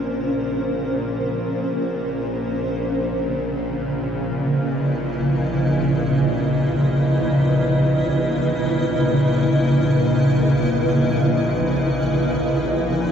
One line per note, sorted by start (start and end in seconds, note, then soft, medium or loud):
0.00 13.12 A#1 medium
0.00 13.12 A#2 medium
0.00 5.84 C#4 medium
0.00 2.79 A#4 medium
0.00 2.79 C5 medium
2.79 13.12 C#3 medium
3.92 13.12 B4 medium
4.19 13.12 E4 medium
4.27 13.12 D#5 medium